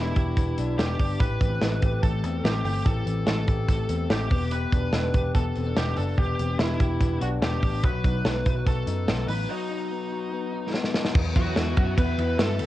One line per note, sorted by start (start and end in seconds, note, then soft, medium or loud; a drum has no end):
0.00 0.13 E1 medium
0.00 0.36 B3 medium
0.00 0.57 D4 medium
0.00 0.78 E4 medium
0.00 0.16 G4 medium
0.00 0.75 E5 medium
0.16 0.33 E1 medium
0.16 1.20 G4 medium
0.16 kick medium
0.16 closed hi-hat medium
0.37 0.54 E1 medium
0.37 0.78 B3 medium
0.37 kick medium
0.37 closed hi-hat medium
0.58 0.75 B1 medium
0.58 0.99 D4 medium
0.58 closed hi-hat medium
0.78 0.96 E1 medium
0.78 1.24 B3 medium
0.78 1.21 G4 medium
0.78 1.17 G5 medium
0.78 snare loud
0.78 closed hi-hat medium
0.99 1.16 G1 medium
0.99 1.24 D4 medium
0.99 kick medium
0.99 open hi-hat medium
1.20 1.37 A1 loud
1.20 2.85 E3 medium
1.20 1.82 G4 medium
1.20 2.02 B4 loud
1.20 1.99 B5 medium
1.20 kick loud
1.20 closed hi-hat medium
1.41 1.58 A1 medium
1.41 2.22 C4 medium
1.41 kick loud
1.41 closed hi-hat medium
1.62 1.79 A1 loud
1.62 2.02 A3 medium
1.62 snare medium
1.62 closed hi-hat medium
1.82 1.99 A1 medium
1.82 2.86 G4 medium
1.82 kick medium
1.82 closed hi-hat medium
2.02 2.23 A1 medium
2.02 2.43 A3 medium
2.02 2.46 A4 medium
2.02 2.41 A5 medium
2.02 kick medium
2.02 closed hi-hat medium
2.23 2.40 E2 medium
2.23 2.64 C4 medium
2.23 closed hi-hat medium
2.44 2.61 A1 medium
2.44 3.27 A3 medium
2.44 2.64 G4 medium
2.44 2.64 G5 medium
2.44 snare loud
2.44 closed hi-hat medium
2.65 2.82 G1 medium
2.65 3.06 C4 medium
2.65 2.87 G4 medium
2.65 2.84 G5 medium
2.65 open hi-hat medium
2.85 3.03 A1 medium
2.85 4.76 E3 medium
2.85 3.48 G4 medium
2.85 3.26 A4 loud
2.85 3.24 A5 medium
2.85 kick loud
2.85 closed hi-hat medium
3.07 3.24 A1 medium
3.07 3.89 C4 medium
3.07 closed hi-hat medium
3.27 3.44 A1 loud
3.27 3.68 A3 medium
3.27 4.13 A4 medium
3.27 4.07 A5 medium
3.27 snare medium
3.27 closed hi-hat medium
3.48 3.65 A1 medium
3.48 4.52 G4 medium
3.48 kick medium
3.48 closed hi-hat medium
3.69 3.86 A1 medium
3.69 4.09 A3 medium
3.69 kick medium
3.69 closed hi-hat medium
3.89 4.06 E2 medium
3.89 4.35 C4 medium
3.89 closed hi-hat medium
4.10 4.27 A1 medium
4.10 4.30 A3 medium
4.10 4.53 G4 medium
4.10 4.49 G5 medium
4.10 snare loud
4.10 closed hi-hat medium
4.30 4.65 E1 medium
4.30 4.52 B3 medium
4.30 kick medium
4.30 open hi-hat medium
4.51 4.93 B3 medium
4.51 5.14 G4 medium
4.51 5.31 B4 loud
4.51 5.31 B5 medium
4.51 closed hi-hat loud
4.72 4.89 E1 medium
4.72 5.56 D4 medium
4.72 kick loud
4.72 closed hi-hat medium
4.93 5.10 E1 loud
4.93 5.35 B3 medium
4.93 snare medium
4.93 closed hi-hat medium
5.14 5.31 E1 medium
5.14 6.18 G4 medium
5.14 kick medium
5.14 closed hi-hat medium
5.35 5.52 E1 medium
5.35 5.77 B3 medium
5.35 5.78 A4 medium
5.35 5.73 A5 medium
5.35 kick medium
5.35 closed hi-hat medium
5.55 5.73 E1 medium
5.55 5.66 C4 medium
5.55 closed hi-hat medium
5.66 5.97 D4 soft
5.76 5.94 E1 medium
5.76 6.18 B3 medium
5.76 5.98 G4 medium
5.76 5.96 G5 medium
5.76 snare loud
5.76 closed hi-hat medium
5.96 6.14 F#1 medium
5.96 6.39 D4 medium
5.96 6.18 A4 medium
5.96 6.16 A5 medium
5.96 open hi-hat medium
6.17 6.35 E1 medium
6.17 6.60 B3 medium
6.17 6.59 G4 medium
6.17 6.80 G4 medium
6.17 6.57 G5 medium
6.17 kick loud
6.17 closed hi-hat medium
6.39 6.56 E1 medium
6.39 6.49 C4 medium
6.39 closed hi-hat medium
6.49 7.21 D4 soft
6.59 6.77 E1 medium
6.59 7.01 B3 medium
6.59 7.21 E4 medium
6.59 7.18 E5 medium
6.59 snare medium
6.59 closed hi-hat medium
6.80 6.97 E1 medium
6.80 7.84 G4 medium
6.80 kick medium
6.80 closed hi-hat medium
7.01 7.18 E1 loud
7.01 7.42 B3 medium
7.01 kick medium
7.01 closed hi-hat medium
7.21 7.38 B1 medium
7.21 7.62 D4 medium
7.21 7.27 F#4 medium
7.21 7.31 F#5 medium
7.21 closed hi-hat medium
7.42 7.59 E1 medium
7.42 8.25 B3 medium
7.42 7.85 G4 medium
7.42 7.81 G5 medium
7.42 snare loud
7.42 closed hi-hat medium
7.62 7.83 A1 medium
7.62 7.88 D4 medium
7.62 kick medium
7.62 open hi-hat medium
7.83 8.01 B1 loud
7.83 9.49 F#3 medium
7.83 8.46 F#4 medium
7.83 8.66 B4 loud
7.83 8.63 B5 medium
7.83 kick loud
7.83 closed hi-hat medium
8.04 8.21 B1 medium
8.04 8.86 D#4 medium
8.04 kick medium
8.04 closed hi-hat medium
8.25 8.42 B1 loud
8.25 8.67 B3 medium
8.25 snare medium
8.25 closed hi-hat medium
8.46 8.63 B1 medium
8.46 8.57 E4 medium
8.46 kick medium
8.46 closed hi-hat medium
8.57 9.49 F#4 soft
8.66 8.84 B1 loud
8.66 9.07 B3 medium
8.66 9.28 A4 medium
8.66 9.25 A5 medium
8.66 kick medium
8.66 closed hi-hat medium
8.87 9.09 F#2 medium
8.87 9.28 D#4 medium
8.87 closed hi-hat medium
9.08 9.25 B1 medium
9.08 9.91 B3 medium
9.08 snare loud
9.08 closed hi-hat medium
9.28 9.46 A1 medium
9.28 9.70 D#4 medium
9.28 9.50 B4 medium
9.28 9.49 B5 medium
9.28 open hi-hat medium
9.49 11.40 F#3 medium
9.49 10.70 D#4 medium
9.49 10.12 F#4 medium
9.49 10.70 D#5 medium
9.71 10.52 D#4 medium
9.91 10.32 B3 medium
10.12 11.40 F#4 medium
10.33 10.74 B3 medium
10.54 10.94 D#4 medium
10.74 11.57 B3 medium
10.74 snare medium
10.84 snare medium
10.94 11.20 D#4 medium
10.94 snare medium
11.05 snare medium
11.15 11.32 E2 loud
11.15 12.66 B4 medium
11.15 12.66 E5 medium
11.15 12.66 F#5 medium
11.15 12.66 E6 medium
11.15 kick loud
11.15 crash loud
11.36 11.53 E2 medium
11.36 11.94 F#3 medium
11.36 12.18 E4 medium
11.36 12.00 F#4 medium
11.36 kick loud
11.36 ride medium
11.56 11.73 E2 loud
11.56 11.97 B3 medium
11.56 snare medium
11.56 ride medium
11.77 11.94 F#2 medium
11.77 12.63 F#4 medium
11.77 kick loud
11.77 ride medium
11.97 12.15 E2 loud
11.97 12.36 B3 medium
11.97 12.66 B3 medium
11.97 12.36 B4 loud
11.97 kick loud
11.97 ride medium
12.18 12.35 E2 medium
12.18 12.59 E4 medium
12.18 ride medium
12.39 12.60 G2 medium
12.39 12.66 A3 medium
12.39 12.66 A4 loud
12.39 snare loud
12.39 ride medium
12.59 12.66 D2 loud
12.59 12.66 E4 medium
12.59 open hi-hat medium
12.59 ride medium